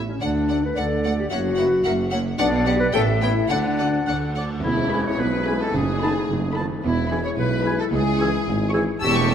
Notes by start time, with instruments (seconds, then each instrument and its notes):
Already playing: double bass section A1, tuba A1
0.09 clarinet C#4, french horn section C#4
0.20 cello section D2, tuba D2, double bass section D2, viola section A3, french horn section D4, clarinet D4, violin section D5 F#5
0.49 viola section A3, violin section D5 F#5
0.64 french horn section B4, clarinet B4
0.76 tuba D2, cello section D2, double bass section D2, viola section A3, french horn section A4, clarinet A4, violin section D5 F#5, flute D5
1.04 viola section A3, violin section D5 F#5
1.18 french horn section G4, clarinet G4
1.30 double bass section F#1, tuba F#1, cello section F#2, viola section A#3, french horn section F#4, clarinet F#4, flute C#5, violin section E5 F#5
1.57 viola section A#3, flute B4, violin section E5 F#5
1.84 tuba F#1, double bass section F#1, cello section F#2, viola section A#3, flute A#4, violin section E5 F#5
2.11 viola section A#3, flute C#5, violin section E5 F#5
2.38 tuba B1, double bass section B1, cello section B2, viola section B3, clarinet D4, french horn section D4, violin section D5 F#5, flute D5
2.66 viola section B3, clarinet G4, french horn section G4, violin section D5 F#5
2.80 clarinet B4, french horn section B4
2.93 tuba A1, double bass section A1, cello section A2, viola section B3, clarinet A4, french horn section A4, violin section C#5 G5, flute E5
3.21 viola section B3, clarinet E4, french horn section E4, violin section C#5 G5
3.49 tuba D2, double bass section D2, cello section D3, viola section A3, clarinet D4, french horn section D4, violin section D5 F#5, flute F#5
3.78 viola section A3, violin section D5 F#5
4.06 tuba D2, double bass section D2, cello section D3, viola section A3, violin section D5 F#5, oboe F#5
4.36 viola section A3, violin section D5 F#5, oboe D5
4.63 tuba E1, double bass section E1, cello section E2, french horn section G#3 E4, clarinet E4, violin section E4, tam-tam
4.91 viola section G#3 B4, oboe G#5, violin section B5, flute B5
5.06 clarinet C#5, violin section C#5
5.19 tuba B1, double bass section B1, cello section B2, clarinet B4, violin section B4
5.45 viola section G#3 B4, oboe G#5, violin section B5, flute B5
5.60 violin section A4, clarinet A4
5.73 tuba F#1, double bass section F#1, cello section F#2, french horn section A3 D#4, violin section G#4, clarinet G#4
6.00 viola section D#3 A4, oboe A5, violin section B5, flute B5
6.28 tuba F#1, double bass section F#1, cello section F#2
6.54 viola section D#3 A4, oboe A5, violin section B5, flute B5
6.83 tuba E1, double bass section E1, cello section E2, french horn section G#3 E4, violin section E4, clarinet E4
7.09 viola section E3 G#4, oboe G#5, violin section B5, flute B5
7.24 violin section C#5, clarinet C#5
7.37 tuba B1, double bass section B1, cello section B2, violin section B4, clarinet B4
7.64 viola section E3 G#4, oboe G#5, violin section B5, flute B5
7.78 violin section A4, clarinet A4
7.93 tuba C#2, cello section C#2, double bass section C#2, violin section G#4, clarinet G#4
8.19 viola section E3 G#4, oboe G#5, violin section C#6, flute E6
8.47 tuba G#1, double bass section G#1, cello section G#2
8.72 viola section E3 G#4, oboe G#5, violin section C#6, flute E6
9.00 tuba E1, double bass section E1, cello section E2, viola section G3 A4, french horn section A3 C#4, clarinet G4, violin section G4 E6, oboe A5, flute C#6
9.14 viola section A3 G4, violin section C#6
9.28 viola section G3 A4, violin section E6